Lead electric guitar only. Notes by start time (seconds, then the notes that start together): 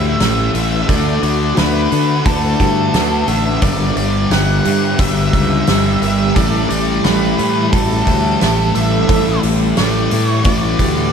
Already playing: E5
0.55 E5
0.89 D5
1.23 D5
1.58 B4
2.26 A4
3.28 E5
3.62 D5
3.97 D5
4.31 F#5
5.00 E5
6.02 E5
6.36 D5
6.70 D5
7.04 B4
7.72 A4
8.75 E5
9.78 D5
10.27 C#5
10.45 D5